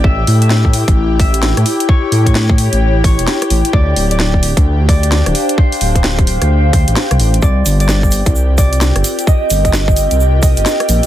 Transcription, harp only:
0.00 1.20 D5 loud
0.00 0.10 F5 medium
0.04 0.42 E5 loud
0.42 1.20 E5 medium
1.20 2.92 E5 medium
1.89 2.26 C#5 loud
2.26 3.04 C#5 medium
3.04 3.80 C#5 loud
3.74 4.11 D5 loud
4.11 4.88 D5 medium
4.89 6.74 D5 loud
5.58 5.95 C5 loud
5.96 6.73 C5 medium
6.74 8.72 C5 medium
7.43 7.80 D5 loud
7.80 8.58 D5 medium
8.58 9.33 D5 loud
9.27 9.65 D#5 loud
9.65 10.42 D#5 loud
10.43 11.06 D#5 loud

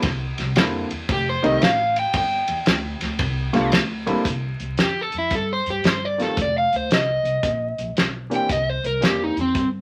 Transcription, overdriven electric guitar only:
1.12 1.28 G4 medium
1.29 1.45 C5 medium
1.47 1.62 D#5 medium
1.63 1.97 F5 medium
1.99 2.15 G5 medium
2.17 3.70 G5 medium
4.83 5.01 G4 medium
5.01 5.16 A4 medium
5.18 5.33 E4 medium
5.35 5.51 A4 medium
5.53 5.68 C5 medium
5.70 5.86 G4 medium
5.88 6.05 C5 medium
6.05 6.21 D5 medium
6.22 6.38 A4 medium
6.42 6.57 D5 medium
6.58 6.74 F5 medium
6.76 6.92 C5 medium
6.93 7.95 D#5 medium
8.35 8.51 G5 medium
8.52 8.68 D#5 medium
8.69 8.85 C5 medium
8.86 9.03 A#4 medium
9.06 9.21 G4 medium
9.24 9.39 D#4 medium
9.41 9.67 C4 medium

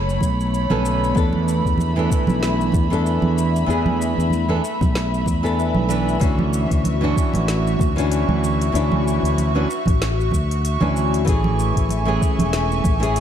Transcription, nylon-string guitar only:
0.70 1.12 D3 medium
0.70 1.13 B3 medium
0.70 1.13 C#4 medium
0.70 1.13 A4 medium
1.15 1.92 E3 medium
1.15 1.93 B3 medium
1.15 1.93 D4 medium
1.15 1.94 A4 medium
1.96 2.87 E3 medium
1.96 2.88 B3 medium
1.96 2.88 D4 medium
1.96 2.89 A4 medium
2.90 3.65 E3 medium
2.90 3.65 B3 medium
2.90 3.66 D4 medium
2.90 3.66 A4 medium
3.66 4.44 E3 medium
3.66 4.45 B3 medium
3.66 4.45 D4 medium
3.66 4.46 G#4 medium
4.48 4.61 E3 medium
4.48 4.61 B3 medium
4.48 4.61 D4 medium
4.48 4.61 A4 medium
5.43 5.86 E3 medium
5.43 5.86 B3 medium
5.43 5.86 D4 medium
5.43 5.87 A4 medium
5.89 6.18 E3 medium
5.89 6.18 B3 medium
5.89 6.18 D4 medium
5.89 6.18 B4 medium
6.20 6.97 E3 medium
6.20 6.98 C#4 medium
6.20 6.98 D4 medium
6.20 6.99 F#4 medium
7.01 7.92 E3 medium
7.01 7.93 C#4 medium
7.01 7.93 D4 medium
7.01 7.94 F#4 medium
7.96 8.70 E3 medium
7.96 8.71 C#4 medium
7.96 8.71 D4 medium
7.96 8.72 F#4 medium
8.72 9.50 E3 medium
8.72 9.51 C#4 medium
8.72 9.51 D4 medium
8.72 9.52 E4 medium
9.55 9.67 E3 medium
9.55 9.67 C#4 medium
9.55 9.67 D4 medium
9.55 9.67 F#4 medium
10.80 11.23 E3 medium
10.80 11.23 C#4 medium
10.80 11.24 D4 medium
10.80 11.24 F#4 medium
11.25 12.03 E3 medium
11.25 12.03 A3 medium
11.25 12.04 C#4 medium
11.25 12.04 G#4 medium
12.05 12.97 E3 medium
12.05 12.98 A3 medium
12.05 12.98 C#4 medium
12.05 12.99 G#4 medium
13.00 13.20 E3 medium
13.00 13.20 A3 medium
13.00 13.20 C#4 medium
13.00 13.20 G#4 medium

